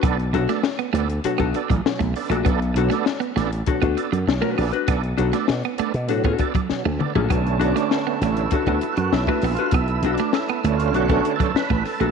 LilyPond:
<<
  \new Staff \with { instrumentName = "Tonewheel organ" } { \time 4/4 \key b \minor \tempo 4 = 99 r1 | r1 | r1 | <a' b' a''>1~ |
<a' b' a''>1 | }
  \new Staff \with { instrumentName = "Hollow-body jazz guitar" } { \time 4/4 \key b \minor r8 <d' fis' a'>16 r4 r16 <d' fis' a'>16 <d' fis' a'>16 r4 r16 <d' fis' a'>16 | r8 <d' fis' a'>16 r4 r16 <d' fis' a'>16 <d' fis' a'>16 r8. <d' fis' b'>16 r16 <d' fis' b'>16 | r8 <d' fis' a'>16 r4 r16 <d' fis' a'>16 <d' fis' a'>16 r4 r16 <d' fis' a'>16 | r8 <d' fis' a'>16 r4 r16 <d' fis' a'>16 <d' fis' a'>16 r8. <d' fis' b'>16 r16 <d' fis' b'>16 |
r8 <d' fis' a'>16 r4 r16 <d' fis' a'>16 <d' fis' a'>16 r4 r16 <d' fis' a'>16 | }
  \new Staff \with { instrumentName = "Tonewheel organ" } { \time 4/4 \key b \minor <b d' a'>16 r8 <b d' a'>16 r8 <b d' a'>16 r8. <b d' a'>16 <d' a'>16 r8 <b d' a'>16 <d' a'>16 | <b d' a'>16 r8 <b d' a'>16 r8 <b d' a'>16 r8. <b d' a'>16 <d' a'>16 <d' a'>16 r16 <b d' a'>16 r16 | <b d' a'>16 r8 <b d' a'>16 r8 <b d' a'>16 r8. <b d' a'>16 <d' a'>16 r8 <b d' a'>16 <d' a'>16 | r8 d'8 \tuplet 3/2 { b4 e'8~ e'4 fis'8 e'4 eis'8 } |
\tuplet 3/2 { e'4 d'8 e'4 eis'8 fis'4 a'8 } b'8 a'8 | }
  \new Staff \with { instrumentName = "Tonewheel organ" } { \clef bass \time 4/4 \key b \minor r8 <b, fis>16 r4 r16 <b, fis>16 r8. <b, fis>16 r8. | r8 <b, fis>16 r4 r16 <b, fis>16 r4 <b, fis>16 r8 | r8 <b, fis>16 r4 r16 <b, fis>16 r8. <b, fis>16 r8. | <d a cis'>2 <d a cis'>8 r4. |
r4. <d a cis'>4. r4 | }
  \new Staff \with { instrumentName = "Clean electric guitar" } { \time 4/4 \key b \minor b16 r8 a16 r16 b16 a16 r8 b16 r16 fis16 r16 a16 r16 a16 | b16 r8 a16 r16 b16 a16 r8 b16 r16 fis16 r16 a16 b16 r16 | b16 r8 a16 r16 b16 a16 r8 b16 r16 fis16 r16 a16 r16 a16 | b16 r8 a16 r16 b16 a16 r8 b16 r16 fis16 r16 a16 b16 r16 |
b16 r8 a16 r16 b16 a16 r8 b16 r16 fis16 r16 a16 r16 a16 | }
  \new Staff \with { instrumentName = "Slap bass" } { \clef bass \time 4/4 \key b \minor b,,8 b,,16 r8. d,8 r16 b,,16 r16 a,,16 r16 b,,16 r16 ais,,16 | b,,8 b,,16 r8. a,,8 r16 d,16 r16 fis,16 b,,16 r16 ais,,16 r16 | b,,8 b,,16 r16 b,16 r8 b,16 a,8 r8. d,16 r16 ais,,16 | b,,8 b,,16 r8. a,,8 r16 d,16 r16 fis,16 b,,16 r16 ais,,16 r16 |
b,,8 b,,16 r8. d,8 b,,8 r8. a,,16 r16 ais,,16 | }
  \new DrumStaff \with { instrumentName = "Drums" } \drummode { \time 4/4 <hh bd>16 hh16 hh16 <hh sn>16 sn16 hh16 hh16 hh16 hh16 <hh bd>16 hh16 <hh bd>16 sn16 <hh bd>16 hho16 hh16 | <hh bd>16 hh16 hh16 <hh sn>16 sn16 hh16 <hh sn>16 hh16 <hh bd>16 <hh bd>16 hh16 hh16 sn8 hho16 hh16 | <hh bd>16 hh16 hh16 <hh sn>16 sn16 hh16 hh16 hh16 hh16 <hh bd>16 <hh bd>16 <hh bd>16 sn8 toml16 tomfh16 | <hh bd>16 hh16 hh16 <hh sn>16 sn8 <hh sn>16 hh16 <hh bd>16 <hh bd>16 hh16 hh16 sn16 bd16 <hho sn>16 hh16 |
<hh bd>16 hh16 hh16 <hh sn>16 sn16 hh16 hh16 hh16 hh16 <hh bd>16 hh16 <hh bd>16 sn16 <hh bd>16 <hho sn>16 hh16 | }
>>